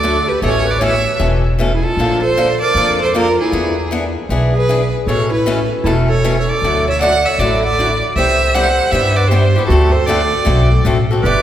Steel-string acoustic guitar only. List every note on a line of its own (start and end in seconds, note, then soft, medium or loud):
0.03 0.16 D3 medium
0.03 0.16 F#3 medium
0.03 0.16 A3 medium
0.03 0.16 D4 medium
0.03 0.16 F#4 medium
0.42 0.65 B2 medium
0.42 0.65 E3 medium
0.42 0.65 A3 medium
0.42 0.65 C#4 medium
0.42 0.65 A4 medium
0.81 0.93 B2 medium
0.81 0.93 E3 medium
0.81 0.93 A3 medium
0.81 0.94 C#4 medium
0.81 0.94 A4 medium
1.19 1.42 B2 medium
1.19 1.42 E3 medium
1.19 1.42 A3 medium
1.19 1.43 C#4 medium
1.19 1.42 A4 medium
1.59 1.70 B2 medium
1.59 1.71 E3 medium
1.59 1.71 A3 medium
1.59 1.71 C#4 medium
1.59 1.72 A4 medium
1.99 2.20 D3 soft
1.99 2.21 F3 soft
1.99 2.21 A#3 medium
1.99 2.21 D4 medium
1.99 2.21 A4 medium
2.37 2.49 D3 medium
2.37 2.49 F3 medium
2.37 2.49 A#3 medium
2.37 2.49 D4 medium
2.37 2.49 A4 medium
2.76 2.98 D3 medium
2.76 2.98 F3 medium
2.76 2.98 A#3 medium
2.76 2.98 D4 medium
2.76 2.98 A4 medium
3.14 3.26 D3 medium
3.14 3.26 F3 medium
3.14 3.26 A#3 medium
3.14 3.26 D4 medium
3.14 3.26 A4 medium
3.52 3.74 E3 soft
3.52 3.75 B3 medium
3.52 3.75 D4 medium
3.52 3.75 G#4 medium
3.91 4.03 E3 medium
3.91 4.03 B3 medium
3.91 4.04 D4 medium
3.91 4.03 G#4 medium
4.30 4.52 E3 medium
4.30 4.52 B3 medium
4.30 4.53 D4 medium
4.30 4.53 G#4 medium
4.69 4.80 E3 medium
4.69 4.81 B3 medium
4.69 4.81 D4 medium
4.69 4.81 G#4 medium
5.08 5.30 B2 medium
5.08 5.30 E3 medium
5.08 5.30 A3 medium
5.08 5.30 C#4 medium
5.08 5.30 A4 medium
5.46 5.58 B2 medium
5.46 5.58 E3 medium
5.46 5.58 A3 medium
5.46 5.58 C#4 medium
5.46 5.58 A4 medium
5.86 6.07 B2 medium
5.86 6.07 E3 medium
5.86 6.07 A3 medium
5.86 6.07 C#4 medium
5.86 6.08 A4 medium
6.24 6.35 B2 medium
6.24 6.35 E3 medium
6.24 6.36 A3 medium
6.24 6.35 C#4 medium
6.24 6.36 A4 medium
6.64 6.85 D3 soft
6.64 6.85 F#3 medium
6.64 6.85 A3 medium
6.64 6.85 E4 medium
6.64 6.85 F#4 medium
7.01 7.12 D3 medium
7.01 7.13 F#3 medium
7.01 7.13 A3 medium
7.01 7.13 E4 medium
7.01 7.13 F#4 medium
7.39 7.61 D3 medium
7.39 7.61 F#3 medium
7.39 7.61 A3 medium
7.39 7.62 E4 medium
7.39 7.62 F#4 medium
7.79 7.90 D3 medium
7.79 7.90 F#3 medium
7.79 7.90 A3 medium
7.79 7.90 E4 medium
7.79 7.90 F#4 medium
8.18 8.39 C3 medium
8.18 8.39 G3 medium
8.18 8.39 B3 medium
8.18 8.39 E4 medium
8.18 8.39 G4 medium
8.55 8.66 C3 medium
8.55 8.66 G3 medium
8.55 8.67 B3 medium
8.55 8.67 E4 medium
8.55 8.67 G4 medium
8.92 9.14 C3 medium
8.92 9.15 G3 medium
8.92 9.15 B3 medium
8.92 9.15 E4 medium
8.92 9.16 G4 medium
9.31 9.43 C3 medium
9.31 9.43 G3 medium
9.31 9.43 B3 medium
9.31 9.43 E4 medium
9.31 9.44 G4 medium
9.56 9.71 B3 soft
9.56 9.70 E4 soft
9.56 9.69 G4 soft
9.70 9.92 D3 medium
9.70 9.92 A3 soft
9.70 9.92 C4 medium
9.70 9.92 F#4 medium
9.70 9.93 A4 medium
10.07 10.19 D3 medium
10.07 10.20 A3 medium
10.07 10.20 C4 medium
10.07 10.21 F#4 medium
10.07 10.21 A4 medium
10.45 10.67 D3 medium
10.45 10.68 A3 medium
10.45 10.68 C4 medium
10.45 10.68 F#4 medium
10.45 10.68 A4 medium
10.85 10.96 D3 medium
10.85 10.97 A3 medium
10.85 10.97 C4 medium
10.85 10.97 F#4 medium
10.85 10.97 A4 medium
11.11 11.25 C4 soft
11.11 11.24 F#4 soft
11.11 11.24 A4 soft
11.25 11.42 G3 medium
11.25 11.42 B3 medium
11.25 11.42 E4 medium
11.25 11.42 G4 medium